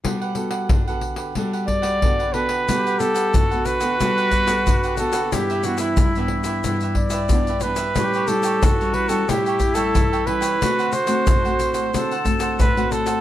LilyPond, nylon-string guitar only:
\new Staff \with { instrumentName = "Nylon-string guitar" } { \time 4/4 \key g \major \tempo 4 = 91 << { <b fis' a'>8 <b fis' a'>8. <b fis' a'>8. <b fis' a'>4 <b fis' a'>16 r16 <b fis' a'>8 | <b fis' a'>8 <b a'>8. <b fis' a'>8 <b fis' a'>16 <b fis' a'>8 r16 <b fis' a'>8. <b fis' a'>16 r16 | <e b d'>8 <e b d'>8 r16 <e b d'>8. <e b d'>8. r16 <e b d'>16 r16 <e b d'>16 r16 | <g cis' e'>8 <g cis' e'>8 r16 <g cis' e'>8 <g cis' e'>16 <g cis' e'>8 r16 <g cis' e'>8. <g cis' e'>8 |
<a c' fis'>8 r16 <a c' fis'>8 <a c' fis'>8. <a c' fis'>16 r16 <a c' fis'>8 r16 <a c' fis'>8. | } \\ { g4 d4 g4 d4 | g4 d4 g4 d4 | g,4 g,4 g,4 g,4 | a,4 e4 a,4 e4 |
d4 a,4 d4 a,4 | } >> }